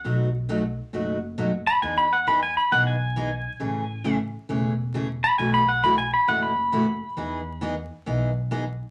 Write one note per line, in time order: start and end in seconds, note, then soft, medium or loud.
0.00 0.17 F#5 medium
0.04 0.76 B1 medium
0.04 0.27 B2 soft
0.04 0.28 F#3 medium
0.04 0.28 A3 medium
0.04 0.28 D#4 medium
0.04 0.28 F#4 medium
0.49 0.61 B2 medium
0.49 0.61 F#3 medium
0.49 0.61 A3 medium
0.49 0.62 D#4 medium
0.49 0.62 F#4 medium
0.93 1.65 F#1 medium
0.93 1.16 B2 medium
0.93 1.16 F#3 medium
0.93 1.17 A3 medium
0.93 1.17 D#4 medium
0.93 1.17 F#4 medium
1.38 1.50 B2 medium
1.38 1.50 F#3 medium
1.38 1.50 A3 medium
1.38 1.51 D#4 medium
1.38 1.51 F#4 medium
1.67 1.82 B5 loud
1.82 2.54 E2 medium
1.82 2.05 E3 medium
1.82 2.05 B3 medium
1.82 2.06 D#4 medium
1.82 2.06 G#4 medium
1.82 1.97 G#5 loud
1.98 2.12 B5 loud
2.13 2.27 F#5 medium
2.27 2.39 E3 medium
2.27 2.39 B3 medium
2.27 2.40 D#4 medium
2.27 2.40 G#4 medium
2.27 2.42 B5 medium
2.43 2.57 G#5 medium
2.57 2.71 B5 medium
2.71 3.43 B1 medium
2.71 2.94 E3 medium
2.71 2.94 B3 medium
2.71 2.95 D#4 medium
2.71 2.95 G#4 medium
2.71 2.86 F#5 loud
2.87 4.16 G#5 medium
3.16 3.28 E3 medium
3.16 3.29 B3 medium
3.16 3.29 D#4 medium
3.16 3.29 G#4 medium
3.60 4.32 A1 medium
3.60 3.83 C#3 medium
3.60 3.83 E3 medium
3.60 3.83 A3 medium
3.60 3.83 C#4 medium
3.60 3.84 G#4 medium
4.04 4.17 C#3 medium
4.04 4.17 E3 medium
4.04 4.17 A3 medium
4.04 4.17 C#4 medium
4.04 4.17 G#4 medium
4.49 5.21 E1 medium
4.49 4.72 C#3 medium
4.49 4.72 E3 medium
4.49 4.72 A3 medium
4.49 4.72 C#4 medium
4.49 4.73 G#4 medium
4.94 5.06 C#3 medium
4.94 5.06 E3 medium
4.94 5.07 A3 medium
4.94 5.07 C#4 medium
4.94 5.07 G#4 medium
5.24 5.38 B5 loud
5.38 6.10 B1 medium
5.38 5.62 B2 medium
5.38 5.62 E3 medium
5.38 5.62 A3 medium
5.38 5.62 E4 medium
5.38 5.62 F#4 medium
5.38 5.53 G#5 medium
5.54 5.68 B5 loud
5.69 5.83 F#5 medium
5.83 5.95 B2 medium
5.83 5.96 E3 medium
5.83 5.96 A3 medium
5.83 5.96 E4 medium
5.83 5.96 F#4 medium
5.83 5.98 B5 medium
5.98 6.12 G#5 medium
6.14 6.28 B5 medium
6.28 6.99 F#1 medium
6.28 6.50 B2 medium
6.28 6.51 E3 medium
6.28 6.51 A3 medium
6.28 6.51 E4 medium
6.28 6.51 F#4 medium
6.28 6.43 F#5 loud
6.43 7.72 B5 medium
6.72 6.84 B2 medium
6.72 6.85 E3 medium
6.72 6.85 A3 medium
6.72 6.85 E4 medium
6.72 6.85 F#4 medium
7.17 7.88 E2 medium
7.17 7.40 E3 medium
7.17 7.40 B3 medium
7.17 7.40 D#4 medium
7.17 7.40 G#4 medium
7.61 7.73 E3 medium
7.61 7.74 B3 medium
7.61 7.74 D#4 medium
7.61 7.74 G#4 medium
8.06 8.78 B1 medium
8.06 8.29 E3 medium
8.06 8.29 B3 medium
8.06 8.29 D#4 medium
8.06 8.29 G#4 medium
8.51 8.63 E3 medium
8.51 8.63 B3 medium
8.51 8.63 D#4 medium
8.51 8.63 G#4 medium